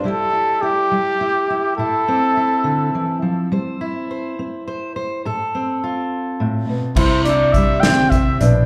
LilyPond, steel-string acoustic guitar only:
\new Staff \with { instrumentName = "Steel-string acoustic guitar" } { \time 6/8 \key c \major \tempo 4. = 69 << { <g e' g'>8 e'8 e'4 e'8 e'8 | e'8 c'8 e'2 | c''8 e'8 c''4 c''8 c''8 | a'8 c'8 f'2 |
r8 e'2~ e'8 | } \\ { c4 r8 g4 r8 | a,4 r8 d8 e8 f8 | g4 r8 c'4 r8 | a,4 r4 a,8 b,8 |
c4 g8 d8 c8 b,8 | } >> }